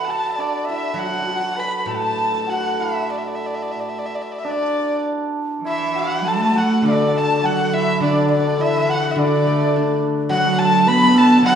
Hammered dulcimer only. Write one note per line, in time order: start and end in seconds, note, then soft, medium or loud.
0.00 0.69 E4 medium
0.00 0.98 F#4 medium
0.00 0.19 B4 medium
0.08 1.87 A4 medium
0.38 4.11 D4 medium
0.69 2.79 E4 medium
0.98 1.06 F#4 medium
1.06 1.13 F#4 medium
1.14 1.22 F#4 medium
1.23 1.28 F#4 medium
1.29 1.35 F#4 medium
1.36 1.40 F#4 medium
1.41 2.46 F#4 medium
1.57 4.29 B4 medium
1.87 2.31 A4 medium
2.32 5.24 A4 medium
2.47 5.71 F#4 medium
2.79 5.64 E4 medium
4.44 6.84 D4 medium
5.65 7.73 E4 medium
5.95 6.54 F#4 medium
6.25 7.14 A4 medium
6.55 7.43 F#4 medium
6.84 8.03 D4 medium
7.14 10.07 A4 medium
7.43 8.88 F#4 medium
7.73 8.59 E4 medium
8.03 8.11 D4 medium
8.12 8.19 D4 medium
8.19 8.25 D4 medium
8.25 8.34 D4 medium
8.35 8.39 D4 medium
8.39 8.46 D4 medium
8.47 9.18 D4 medium
8.59 11.55 E4 medium
8.88 10.29 F#4 medium
9.18 11.55 D4 medium
10.29 11.46 F#4 loud
10.58 11.14 A4 medium
10.86 11.55 B4 loud
11.15 11.55 A4 medium
11.46 11.55 F#4 medium